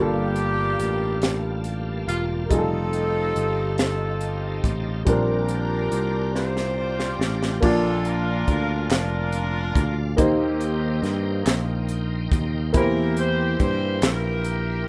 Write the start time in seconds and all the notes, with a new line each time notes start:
Already playing: G1 G2 G3 A#3 D4 F4 G4 F5 A5
0.02 A4
0.36 closed hi-hat
0.80 A1, closed hi-hat
1.22 snare, closed hi-hat
1.64 closed hi-hat
2.08 E1 F4, closed hi-hat
2.45 A#4
2.49 F1 G3 C4 D#4 F4 G#4 A4 D#5 A5, kick, closed hi-hat
2.59 A4
2.93 closed hi-hat
3.36 G1, closed hi-hat
3.78 C4 D#4 A4, snare, closed hi-hat
4.21 closed hi-hat
4.64 A1, kick, closed hi-hat
5.05 A#1 A#2 G3 C4 D4 G4 A#4 C5 D5 A#5, kick, closed hi-hat
5.49 closed hi-hat
5.92 C2, closed hi-hat
6.35 F4 G4 C5, snare
6.57 snare
7.00 snare
7.19 A1, snare
7.43 snare
7.60 A#1 A#2 A#3 D4 F4 A4 D5 F5, kick, crash
8.05 D4 F4 A#4, closed hi-hat
8.48 D2, kick, closed hi-hat
8.89 F1 D4 F4 A#4, snare, clap, closed hi-hat
9.32 closed hi-hat
9.75 D2, kick, closed hi-hat
10.17 D#2 D#3 A#3 C4 D#4 G4 A#4 C5 D#5 G5 C6, kick, closed hi-hat
10.61 closed hi-hat
11.03 G2, snare, closed hi-hat
11.46 A#1, snare, clap, closed hi-hat
11.89 closed hi-hat
12.32 D#2, kick, closed hi-hat
12.73 E2 E3 A#3 E4 G4 A#4 C5 E5, kick, closed hi-hat
13.17 C5, closed hi-hat
13.60 G2 C5, kick, closed hi-hat
14.02 A#1 G4 A#4, snare, clap, closed hi-hat
14.45 closed hi-hat